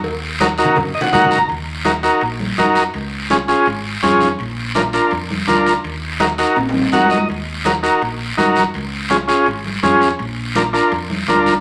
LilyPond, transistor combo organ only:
\new Staff \with { instrumentName = "Transistor combo organ" } { \time 4/4 \key ees \minor \tempo 4 = 166 r4 <ees' ges' bes'>8 <ees' ges' bes'>8 \tuplet 3/2 { r8. ees''16 ges''8 } <ees' ges' bes' ges''>8 bes''8 | r4 <ees' ges' bes'>8 <ees' ges' bes'>8 r4 <ees' ges' bes'>8 r8 | r4 <des' f' aes'>8 <des' f' aes'>8 r4 <des' f' aes'>8 r8 | r4 <d' f' bes'>8 <d' f' bes'>8 r4 <d' f' bes'>8 r8 |
r4 <ees' ges' bes'>8 <ees' ges' bes'>8 r4 <ees' ges' bes' ges''>8 ees''8 | r4 <ees' ges' bes'>8 <ees' ges' bes'>8 r4 <ees' ges' bes'>8 r8 | r4 <des' f' aes'>8 <des' f' aes'>8 r4 <des' f' aes'>8 r8 | r4 <d' f' bes'>8 <d' f' bes'>8 r4 <d' f' bes'>8 r8 | }